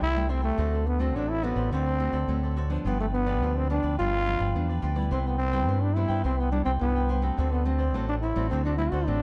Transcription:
Already playing: nylon-string guitar G3 A3 E4, cavaquinho C5 E5 G5
0.01 fingered electric bass C2, nylon-string guitar C3, trombone E4
0.16 nylon-string guitar G3 A3 E4, cavaquinho C5 E5 G5
0.29 trombone C4, cavaquinho A4 C5 E5 G5
0.42 trombone A3, cavaquinho C5 E5 G5
0.58 fingered electric bass D2, nylon-string guitar D3 A3 C4 F#4, cavaquinho F#4 A4 C5 D5
0.73 cavaquinho A4 C5 D5
0.86 trombone B3, muted cavaquinho stroke
0.99 nylon-string guitar A3 C4 F#4, trombone C4, cavaquinho A4 C5 D5
1.15 fingered electric bass A1, nylon-string guitar A2, trombone D4, cavaquinho F#4 A4 C5 D5
1.30 trombone E4
1.43 nylon-string guitar A3 C4 F#4, trombone B3, cavaquinho F#4 A4 C5 D5
1.56 fingered electric bass A1, cavaquinho A4 C5 D5
1.71 fingered electric bass D2, nylon-string guitar D3, trombone C4, cavaquinho F#4 A4 C5 D5
1.86 cavaquinho A4 C5 D5
1.99 nylon-string guitar A3 C4 F#4, muted cavaquinho stroke
2.13 fingered electric bass D2, cavaquinho A4 C5 D5
2.28 fingered electric bass D2, nylon-string guitar A2 A3 C4 F#4
2.43 cavaquinho A4 C5 D5
2.56 cavaquinho F#4 A4 C5 D5
2.70 nylon-string guitar F3 B3 D4, cavaquinho A4 C5 D5
2.85 fingered electric bass G1, nylon-string guitar G2, trombone B3, cavaquinho F4 G4 B4 D5
3.00 trombone A3, cavaquinho G4 B4 D5
3.13 trombone B3, muted cavaquinho stroke
3.26 nylon-string guitar F3 B3 D4, cavaquinho G4 B4 D5
3.42 fingered electric bass D2, nylon-string guitar D3, cavaquinho F4 G4 B4 D5
3.57 trombone C4
3.70 nylon-string guitar F3 B3 D4, trombone D4, cavaquinho F4 G4 B4 D5
3.83 fingered electric bass D2, cavaquinho G4 B4 D5
3.99 fingered electric bass G1, nylon-string guitar G2, trombone F4, cavaquinho F4 G4 B4 D5
4.13 cavaquinho G4 B4 D5
4.26 nylon-string guitar F3 B3 D4, muted cavaquinho stroke
4.39 fingered electric bass G1, cavaquinho G4 B4 D5
4.55 fingered electric bass E2, nylon-string guitar D3 F3 B3 D4
4.69 cavaquinho G4 B4 D5
4.82 fingered electric bass D2, cavaquinho F4 G4 B4 D5
4.96 nylon-string guitar G3 B3 E4, cavaquinho G4 B4 D5
5.11 fingered electric bass C2, nylon-string guitar C3, trombone C4, cavaquinho E4 B4 C5 G5
5.22 trombone B3 C4
5.27 cavaquinho B4 C5 G5
5.38 trombone C4, muted cavaquinho stroke
5.52 nylon-string guitar G3 B3 E4, cavaquinho B4 C5 G5
5.68 fingered electric bass G2, nylon-string guitar G2, cavaquinho E4 B4 C5 G5
5.82 trombone D4
5.95 nylon-string guitar G3 B3 E4, trombone E4, cavaquinho E4 B4 C5 G5
6.08 fingered electric bass G2, cavaquinho B4 C5 G5
6.24 fingered electric bass C2, nylon-string guitar C3, trombone C4, cavaquinho E4 B4 C5 G5
6.39 trombone B3, cavaquinho B4 C5 G5
6.51 nylon-string guitar G3 B3 E4, trombone D4, muted cavaquinho stroke
6.65 fingered electric bass C2, trombone C4, cavaquinho B4 C5 G5
6.80 fingered electric bass C2, nylon-string guitar G2 G3 B3 E4, trombone B3
6.96 cavaquinho B4 C5 G5
7.09 cavaquinho E4 B4 C5 G5
7.22 nylon-string guitar A3 C4 F#4, cavaquinho B4 C5 G5
7.37 fingered electric bass D2, nylon-string guitar D3, trombone C4, cavaquinho F#4 A4 C5 D5
7.52 trombone B3, cavaquinho A4 C5 D5
7.65 nylon-string guitar A3 C4 F#4, trombone C4, muted cavaquinho stroke
7.78 cavaquinho A4 C5 D5
7.94 fingered electric bass A1, nylon-string guitar A2 A3 C4 F#4, cavaquinho F#4 A4 C5 D5
8.09 trombone D4
8.21 trombone E4, cavaquinho F#4 A4 C5 D5
8.35 fingered electric bass A1, nylon-string guitar A3 C4 F#4, cavaquinho A4 C5 D5
8.50 fingered electric bass D2, nylon-string guitar D3, trombone C4, cavaquinho F#4 A4 C5 D5
8.65 nylon-string guitar A3 C4 F#4, trombone D4, cavaquinho A4 C5 D5
8.77 nylon-string guitar A3 C4 F#4, trombone E4, muted cavaquinho stroke
8.90 fingered electric bass D2, trombone F#4, cavaquinho A4 C5 D5
9.07 fingered electric bass A1, nylon-string guitar A2 A3 C4 F#4, trombone D4

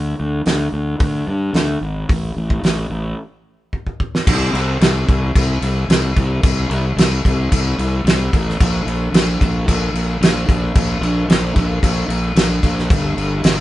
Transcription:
Already playing: fingered electric bass D2
0.20 fingered electric bass D2
0.46 fingered electric bass D2, snare, open hi-hat
0.72 fingered electric bass D2
1.00 fingered electric bass D2, kick, open hi-hat
1.27 fingered electric bass G2
1.53 fingered electric bass D2, snare, open hi-hat
1.81 fingered electric bass G#1
2.09 fingered electric bass A1, kick, open hi-hat
2.37 fingered electric bass A1
2.50 kick
2.63 fingered electric bass A1, snare, open hi-hat
2.90 fingered electric bass A1
3.73 kick
3.87 kick
4.00 kick
4.15 snare
4.27 fingered electric bass C2, kick, crash
4.53 fingered electric bass C2, crash
4.81 fingered electric bass C2, snare, crash
5.08 fingered electric bass C2, kick, crash
5.35 fingered electric bass C2, kick, crash
5.62 fingered electric bass C2, crash
5.89 fingered electric bass C2, snare, crash
6.16 fingered electric bass C2, kick, crash
6.43 fingered electric bass C2, kick, crash
6.69 fingered electric bass C2, crash
6.96 fingered electric bass C2, snare, crash
7.25 fingered electric bass C2, kick, crash
7.52 fingered electric bass C2, kick, crash
7.78 fingered electric bass C2, crash
8.04 fingered electric bass C2, snare, crash
8.33 fingered electric bass A1, kick, crash
8.49 snare
8.61 fingered electric bass A#1, kick, crash
8.85 fingered electric bass A#1, crash
9.12 fingered electric bass A#1, snare, crash
9.41 fingered electric bass A#1, kick, crash
9.68 fingered electric bass A#1, kick, crash
9.93 fingered electric bass A#1, crash
10.21 fingered electric bass A#1, snare, crash
10.48 fingered electric bass A#1, kick, crash
10.76 fingered electric bass A#1, kick, crash
11.01 fingered electric bass A#1, crash
11.28 fingered electric bass A#1, snare, crash
11.56 fingered electric bass A#1, kick, crash
11.83 fingered electric bass A#1, kick, crash
12.08 fingered electric bass A#1, crash
12.35 fingered electric bass A#1, snare, crash
12.63 fingered electric bass A#1, kick, crash
12.79 snare
12.90 fingered electric bass G1, kick, crash
13.17 fingered electric bass G1, crash
13.44 fingered electric bass G1, snare, crash

